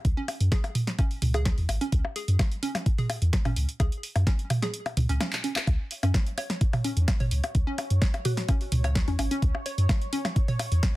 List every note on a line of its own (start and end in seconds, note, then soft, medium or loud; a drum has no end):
0.05 0.14 C#2 loud
0.05 kick loud
0.05 closed hi-hat medium
0.17 0.22 C#4 medium
0.28 open hi-hat medium
0.28 percussion blips soft
0.40 0.49 F#2 loud
0.40 closed hi-hat soft
0.52 0.55 G#4 medium
0.52 kick loud
0.52 snare medium
0.52 closed hi-hat medium
0.64 closed hi-hat soft
0.64 percussion blips soft
0.75 mid tom medium
0.75 open hi-hat loud
0.87 snare medium
0.87 closed hi-hat soft
0.99 1.04 C#4 medium
0.99 kick loud
0.99 closed hi-hat medium
0.99 percussion blips soft
1.11 open hi-hat soft
1.22 1.53 C#2 loud
1.22 mid tom medium
1.22 open hi-hat medium
1.34 1.37 G#4 medium
1.34 closed hi-hat soft
1.34 percussion blips soft
1.45 kick loud
1.45 snare medium
1.45 closed hi-hat medium
1.58 1.66 E2 loud
1.58 open hi-hat soft
1.69 1.78 G#1 medium
1.69 open hi-hat medium
1.69 percussion blips soft
1.81 1.86 C#4 medium
1.81 closed hi-hat soft
1.92 2.02 C#2 loud
1.92 kick loud
1.92 closed hi-hat medium
2.05 percussion blips soft
2.16 2.19 G#4 medium
2.16 open hi-hat medium
2.28 2.37 F#2 loud
2.28 closed hi-hat soft
2.39 kick loud
2.39 snare medium
2.39 closed hi-hat medium
2.39 percussion blips soft
2.52 closed hi-hat soft
2.63 2.68 C#4 medium
2.63 open hi-hat medium
2.75 snare medium
2.75 closed hi-hat soft
2.75 percussion blips soft
2.86 kick loud
2.86 closed hi-hat medium
2.98 3.01 G#4 medium
2.98 mid tom medium
2.98 open hi-hat soft
3.10 open hi-hat medium
3.10 percussion blips soft
3.22 3.30 E2 medium
3.22 closed hi-hat soft
3.33 kick loud
3.33 snare medium
3.33 closed hi-hat medium
3.45 3.54 G#1 loud
3.45 3.50 C#4 medium
3.45 mid tom medium
3.45 open hi-hat soft
3.45 percussion blips soft
3.56 3.66 C#2 medium
3.56 open hi-hat medium
3.69 closed hi-hat soft
3.80 3.89 C#2 loud
3.80 3.83 G#4 medium
3.80 kick loud
3.80 closed hi-hat medium
3.80 percussion blips soft
3.92 closed hi-hat soft
4.03 open hi-hat medium
4.16 4.24 F#2 loud
4.16 closed hi-hat soft
4.16 percussion blips soft
4.27 4.32 C#4 medium
4.27 kick loud
4.27 snare medium
4.27 closed hi-hat medium
4.39 closed hi-hat soft
4.50 mid tom medium
4.50 open hi-hat loud
4.50 percussion blips soft
4.62 4.65 G#4 medium
4.62 snare medium
4.62 closed hi-hat soft
4.74 closed hi-hat medium
4.86 open hi-hat soft
4.86 percussion blips soft
4.97 5.06 C#2 medium
4.97 mid tom medium
4.97 open hi-hat medium
5.09 5.18 C#2 loud
5.09 5.14 C#4 loud
5.09 closed hi-hat soft
5.21 5.28 C#4 medium
5.21 snare loud
5.21 closed hi-hat medium
5.21 percussion blips soft
5.33 clap medium
5.33 open hi-hat soft
5.44 5.52 C#4 medium
5.44 open hi-hat medium
5.56 clap loud
5.56 closed hi-hat soft
5.56 percussion blips soft
5.67 5.77 C#2 loud
5.67 10.96 C#5 medium
5.67 kick loud
5.67 closed hi-hat medium
5.67 percussion blips soft
5.91 open hi-hat medium
6.03 6.12 F#2 loud
6.03 6.08 C#4 medium
6.03 closed hi-hat soft
6.03 percussion blips soft
6.14 kick loud
6.14 snare loud
6.14 closed hi-hat medium
6.26 closed hi-hat soft
6.38 6.43 C#5 medium
6.38 open hi-hat medium
6.38 percussion blips soft
6.50 snare medium
6.50 closed hi-hat soft
6.61 kick loud
6.61 closed hi-hat medium
6.73 mid tom medium
6.73 open hi-hat soft
6.73 percussion blips soft
6.84 6.90 C#4 medium
6.84 open hi-hat medium
6.97 7.05 E2 medium
6.97 closed hi-hat soft
7.08 kick loud
7.08 snare loud
7.08 closed hi-hat medium
7.08 percussion blips soft
7.20 7.29 G#1 loud
7.20 7.25 C#5 medium
7.20 mid tom medium
7.20 open hi-hat soft
7.31 7.41 C#2 medium
7.31 open hi-hat medium
7.44 closed hi-hat soft
7.44 percussion blips soft
7.55 7.64 C#2 loud
7.55 kick loud
7.55 closed hi-hat medium
7.67 7.72 C#4 medium
7.78 open hi-hat loud
7.78 percussion blips soft
7.90 7.99 F#2 loud
7.90 closed hi-hat soft
8.02 8.07 C#5 medium
8.02 kick loud
8.02 snare loud
8.02 closed hi-hat medium
8.14 closed hi-hat soft
8.14 percussion blips soft
8.25 8.72 F#4 loud
8.25 mid tom medium
8.25 open hi-hat loud
8.37 snare medium
8.37 closed hi-hat soft
8.48 8.54 C#4 medium
8.48 kick loud
8.48 closed hi-hat medium
8.48 percussion blips soft
8.61 open hi-hat soft
8.72 9.03 C#2 loud
8.72 mid tom loud
8.72 open hi-hat loud
8.84 8.89 C#5 medium
8.84 closed hi-hat soft
8.84 percussion blips soft
8.95 kick loud
8.95 snare loud
8.95 closed hi-hat medium
9.08 9.16 E2 loud
9.08 9.15 C#4 medium
9.08 open hi-hat soft
9.19 9.28 G#1 medium
9.19 9.27 C#4 medium
9.19 open hi-hat loud
9.19 percussion blips soft
9.31 9.36 C#4 medium
9.31 closed hi-hat soft
9.42 9.52 C#2 loud
9.42 kick loud
9.42 closed hi-hat soft
9.55 percussion blips soft
9.66 9.71 C#5 medium
9.66 open hi-hat loud
9.78 9.87 F#2 loud
9.78 closed hi-hat soft
9.89 kick loud
9.89 snare medium
9.89 closed hi-hat medium
9.89 percussion blips soft
10.02 closed hi-hat soft
10.13 10.18 C#4 medium
10.13 open hi-hat loud
10.25 snare medium
10.25 closed hi-hat soft
10.25 percussion blips soft
10.36 kick loud
10.36 closed hi-hat medium
10.48 10.53 C#5 medium
10.48 mid tom medium
10.48 open hi-hat soft
10.59 open hi-hat loud
10.59 percussion blips soft
10.72 10.80 E2 medium
10.72 closed hi-hat soft
10.83 kick loud
10.83 snare loud
10.83 closed hi-hat medium